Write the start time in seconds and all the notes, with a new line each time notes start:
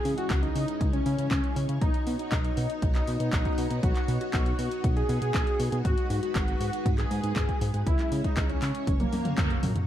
Already playing: E3 G#3 C#4 G#4 C#5
0.05 C#3, open hi-hat
0.18 F#4, closed hi-hat
0.30 C#2, kick, clap, closed hi-hat
0.43 D#4, closed hi-hat
0.55 C#3, open hi-hat
0.68 closed hi-hat
0.81 C#2, kick, closed hi-hat
0.93 C#4, closed hi-hat
1.06 C#3, open hi-hat
1.19 C#3, closed hi-hat
1.31 C#2, kick, clap, closed hi-hat
1.44 closed hi-hat
1.56 C#3, open hi-hat
1.69 C#3, closed hi-hat
1.81 B1 B3 D#4 F#4, kick, closed hi-hat
1.94 closed hi-hat
2.07 B2, open hi-hat
2.19 D#4, closed hi-hat
2.32 B1, kick, clap, closed hi-hat
2.44 D#4, closed hi-hat
2.57 B2, open hi-hat
2.70 closed hi-hat
2.82 B1, kick, closed hi-hat
2.95 D#4, clap, closed hi-hat
3.07 B2, open hi-hat
3.20 B2, closed hi-hat
3.33 B1, kick, clap, closed hi-hat
3.45 kick, closed hi-hat
3.58 B2, open hi-hat
3.71 B2, closed hi-hat
3.83 B1 F#4, kick, closed hi-hat
3.96 clap, closed hi-hat
4.08 B2, open hi-hat
4.21 F#4, closed hi-hat
4.33 B1, kick, clap, closed hi-hat
4.46 F#4, closed hi-hat
4.59 B2, open hi-hat
4.71 closed hi-hat
4.84 B1, kick, closed hi-hat
4.96 G#4, closed hi-hat
5.09 B2, open hi-hat
5.22 B2, closed hi-hat
5.34 B1, kick, clap, closed hi-hat
5.47 closed hi-hat
5.60 B2, open hi-hat
5.72 B2, closed hi-hat
5.85 G#1 G#3 D#4 F#4 B4, kick, closed hi-hat
5.98 closed hi-hat
6.10 G#2, open hi-hat
6.22 F#4, closed hi-hat
6.35 G#1, kick, clap, closed hi-hat
6.48 F#4, closed hi-hat
6.61 G#2, open hi-hat
6.73 closed hi-hat
6.86 G#1, kick, closed hi-hat
6.98 G#4, clap, closed hi-hat
7.11 G#2, open hi-hat
7.24 G#2, closed hi-hat
7.36 G#1, kick, clap, closed hi-hat
7.49 kick, closed hi-hat
7.61 G#2, open hi-hat
7.74 G#2, closed hi-hat
7.86 C#2 G#3 C#4 E4 C#5, kick, closed hi-hat
7.99 clap, closed hi-hat
8.12 C#3, open hi-hat
8.24 D#4, kick, closed hi-hat
8.37 C#2, kick, clap, closed hi-hat
8.50 C#4, closed hi-hat
8.62 C#3, clap, open hi-hat
8.75 closed hi-hat
8.87 F#1 A#3 F#4, kick, closed hi-hat, high tom
9.00 A#3, closed hi-hat, high tom
9.13 F#2, open hi-hat, high tom
9.25 F#2, closed hi-hat, mid tom
9.38 F#1, kick, clap, closed hi-hat, mid tom
9.50 closed hi-hat
9.63 F#2, mid tom, open hi-hat
9.76 F#2, closed hi-hat, mid tom